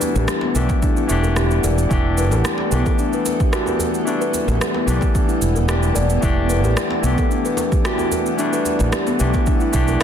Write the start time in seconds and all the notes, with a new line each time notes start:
Already playing: E3 G3 A3 B3 D4 E4 F#4 G4 A4 D5 F#5
0.01 djembe tone, shaker
0.15 A1 G4, djembe slap, djembe bass, shaker
0.28 G4, cross-stick, shaker
0.41 B3, djembe slap
0.55 B1 E3 A3 D4 G4, djembe tone, shaker
0.69 kick, djembe slap, shaker
0.82 D4, kick, shaker
0.97 E4, shaker
1.08 E1 E3 A3 D4 E4, shaker
1.12 G4
1.23 djembe bass, shaker
1.36 G4, cross-stick, shaker
1.51 shaker
1.64 E1 D5, djembe tone, djembe bass, shaker
1.78 shaker
1.89 E1 E3 A3 D4 E4, kick, shaker
1.93 G4
2.18 B4, djembe tone, shaker
2.31 A1 G4, djembe slap, djembe bass, shaker
2.45 cross-stick, shaker
2.58 djembe slap
2.70 B1 E3 A3 B3 D4 G4, djembe tone, shaker
2.86 A4, kick, djembe slap, shaker
2.99 D4, shaker
3.13 B4, shaker
3.26 B4, djembe slap, djembe tone, shaker
3.40 G4, kick, shaker
3.52 E3 A3 D4 F#4 G4, cross-stick, shaker
3.66 djembe tone, shaker
3.79 djembe bass, shaker
3.94 shaker
4.05 E3 A3 D4, shaker
4.09 G3
4.21 B4, shaker
4.34 djembe tone, shaker
4.48 A1 G4, djembe slap, djembe bass, shaker
4.61 G4, cross-stick, shaker
4.74 B3, djembe slap
4.86 B1 E3 A3 D4, djembe tone, shaker
4.90 G4
5.01 kick, djembe slap, shaker
5.14 D4, kick, shaker
5.29 E4, shaker
5.41 E1 E4, shaker
5.55 djembe bass, shaker
5.68 E3 A3 D4 G4, cross-stick, shaker
5.83 shaker
5.95 E1 D5, djembe tone, djembe bass, shaker
6.10 shaker
6.21 E1 E3 A3 D4 E4, kick, shaker
6.25 G4
6.49 B4, djembe tone, shaker
6.64 A1 G4, djembe slap, djembe bass, shaker
6.77 cross-stick, shaker
6.90 djembe slap
7.02 B1 E3 A3 B3 D4, djembe tone, shaker
7.06 G4
7.18 A4, kick, djembe slap, shaker
7.31 D4, shaker
7.45 B4, shaker
7.57 B4, djembe slap, djembe tone, shaker
7.72 G4, kick, shaker
7.84 E3 A3 D4 F#4 G4, cross-stick, shaker
7.98 djembe tone, shaker
8.11 djembe bass, shaker
8.26 shaker
8.37 E3 G3 A3 D4, shaker
8.53 B4, shaker
8.65 djembe tone, shaker
8.79 A1 G4, djembe slap, djembe bass, shaker
8.92 G4, cross-stick, shaker
9.07 B3, djembe slap, shaker
9.19 B1 E3 A3 D4 G4, djembe tone, shaker
9.34 kick, djembe slap, shaker
9.46 D4, kick, shaker
9.60 E4, shaker
9.72 B1 E3 A3 D4 E4 G4, kick, shaker
9.88 djembe bass, shaker